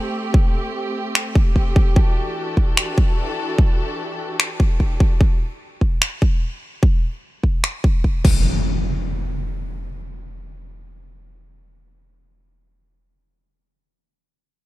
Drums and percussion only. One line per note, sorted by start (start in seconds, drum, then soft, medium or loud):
0.34 kick loud
1.15 finger snap medium
1.35 kick loud
1.56 kick medium
1.76 kick loud
1.96 kick loud
2.57 kick medium
2.77 finger snap medium
2.98 kick loud
3.58 kick loud
4.40 finger snap medium
4.60 kick medium
4.80 kick medium
5.00 kick medium
5.21 kick loud
5.81 kick medium
6.02 finger snap medium
6.22 kick loud
6.83 kick loud
7.44 kick medium
7.64 finger snap medium
7.84 kick loud
8.04 kick medium
8.25 kick loud
8.25 crash medium